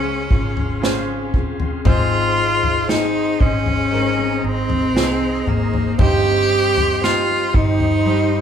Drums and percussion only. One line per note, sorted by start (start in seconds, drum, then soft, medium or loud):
0.31 kick medium
0.57 floor tom medium
0.84 snare loud
1.34 kick medium
1.34 floor tom medium
1.60 floor tom medium
1.85 kick loud
1.85 floor tom loud
2.63 floor tom medium
2.89 snare loud
3.40 kick medium
3.66 floor tom medium
4.70 floor tom medium
4.97 snare loud
5.47 floor tom medium
5.74 floor tom medium
5.99 kick loud
5.99 floor tom loud
6.77 floor tom medium
7.04 snare loud
7.54 kick medium
7.80 floor tom medium